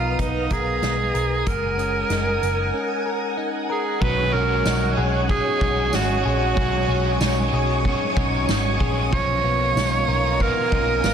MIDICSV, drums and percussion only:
0, 0, Header, 1, 2, 480
1, 0, Start_track
1, 0, Tempo, 638298
1, 1099, Time_signature, 4, 2, 24, 8
1, 8375, End_track
2, 0, Start_track
2, 0, Title_t, "Drums"
2, 144, Note_on_c, 9, 36, 81
2, 145, Note_on_c, 9, 42, 64
2, 219, Note_off_c, 9, 36, 0
2, 220, Note_off_c, 9, 42, 0
2, 379, Note_on_c, 9, 42, 48
2, 382, Note_on_c, 9, 36, 81
2, 454, Note_off_c, 9, 42, 0
2, 457, Note_off_c, 9, 36, 0
2, 621, Note_on_c, 9, 38, 104
2, 622, Note_on_c, 9, 42, 64
2, 696, Note_off_c, 9, 38, 0
2, 697, Note_off_c, 9, 42, 0
2, 863, Note_on_c, 9, 42, 46
2, 938, Note_off_c, 9, 42, 0
2, 1103, Note_on_c, 9, 36, 103
2, 1104, Note_on_c, 9, 42, 59
2, 1178, Note_off_c, 9, 36, 0
2, 1179, Note_off_c, 9, 42, 0
2, 1346, Note_on_c, 9, 42, 39
2, 1421, Note_off_c, 9, 42, 0
2, 1579, Note_on_c, 9, 42, 66
2, 1580, Note_on_c, 9, 38, 89
2, 1654, Note_off_c, 9, 42, 0
2, 1655, Note_off_c, 9, 38, 0
2, 1825, Note_on_c, 9, 42, 50
2, 1901, Note_off_c, 9, 42, 0
2, 3017, Note_on_c, 9, 49, 86
2, 3020, Note_on_c, 9, 36, 115
2, 3093, Note_off_c, 9, 49, 0
2, 3096, Note_off_c, 9, 36, 0
2, 3263, Note_on_c, 9, 51, 40
2, 3339, Note_off_c, 9, 51, 0
2, 3500, Note_on_c, 9, 51, 57
2, 3500, Note_on_c, 9, 54, 58
2, 3501, Note_on_c, 9, 38, 108
2, 3575, Note_off_c, 9, 51, 0
2, 3576, Note_off_c, 9, 38, 0
2, 3576, Note_off_c, 9, 54, 0
2, 3741, Note_on_c, 9, 51, 48
2, 3816, Note_off_c, 9, 51, 0
2, 3981, Note_on_c, 9, 36, 74
2, 4056, Note_off_c, 9, 36, 0
2, 4220, Note_on_c, 9, 36, 102
2, 4296, Note_off_c, 9, 36, 0
2, 4458, Note_on_c, 9, 54, 72
2, 4460, Note_on_c, 9, 38, 125
2, 4534, Note_off_c, 9, 54, 0
2, 4535, Note_off_c, 9, 38, 0
2, 4709, Note_on_c, 9, 51, 38
2, 4784, Note_off_c, 9, 51, 0
2, 4941, Note_on_c, 9, 36, 103
2, 5016, Note_off_c, 9, 36, 0
2, 5185, Note_on_c, 9, 51, 38
2, 5260, Note_off_c, 9, 51, 0
2, 5419, Note_on_c, 9, 54, 64
2, 5420, Note_on_c, 9, 38, 115
2, 5494, Note_off_c, 9, 54, 0
2, 5495, Note_off_c, 9, 38, 0
2, 5664, Note_on_c, 9, 51, 51
2, 5739, Note_off_c, 9, 51, 0
2, 5901, Note_on_c, 9, 51, 52
2, 5903, Note_on_c, 9, 36, 77
2, 5977, Note_off_c, 9, 51, 0
2, 5978, Note_off_c, 9, 36, 0
2, 6140, Note_on_c, 9, 51, 49
2, 6141, Note_on_c, 9, 36, 107
2, 6215, Note_off_c, 9, 51, 0
2, 6217, Note_off_c, 9, 36, 0
2, 6382, Note_on_c, 9, 54, 71
2, 6384, Note_on_c, 9, 38, 112
2, 6384, Note_on_c, 9, 51, 59
2, 6457, Note_off_c, 9, 54, 0
2, 6459, Note_off_c, 9, 38, 0
2, 6459, Note_off_c, 9, 51, 0
2, 6621, Note_on_c, 9, 36, 85
2, 6625, Note_on_c, 9, 51, 39
2, 6696, Note_off_c, 9, 36, 0
2, 6700, Note_off_c, 9, 51, 0
2, 6863, Note_on_c, 9, 36, 96
2, 6938, Note_off_c, 9, 36, 0
2, 7109, Note_on_c, 9, 51, 36
2, 7185, Note_off_c, 9, 51, 0
2, 7347, Note_on_c, 9, 54, 61
2, 7348, Note_on_c, 9, 38, 110
2, 7423, Note_off_c, 9, 38, 0
2, 7423, Note_off_c, 9, 54, 0
2, 7584, Note_on_c, 9, 51, 42
2, 7659, Note_off_c, 9, 51, 0
2, 7819, Note_on_c, 9, 51, 53
2, 7823, Note_on_c, 9, 36, 72
2, 7894, Note_off_c, 9, 51, 0
2, 7899, Note_off_c, 9, 36, 0
2, 8061, Note_on_c, 9, 51, 43
2, 8062, Note_on_c, 9, 36, 97
2, 8136, Note_off_c, 9, 51, 0
2, 8138, Note_off_c, 9, 36, 0
2, 8301, Note_on_c, 9, 54, 62
2, 8303, Note_on_c, 9, 38, 113
2, 8303, Note_on_c, 9, 51, 59
2, 8375, Note_off_c, 9, 38, 0
2, 8375, Note_off_c, 9, 51, 0
2, 8375, Note_off_c, 9, 54, 0
2, 8375, End_track
0, 0, End_of_file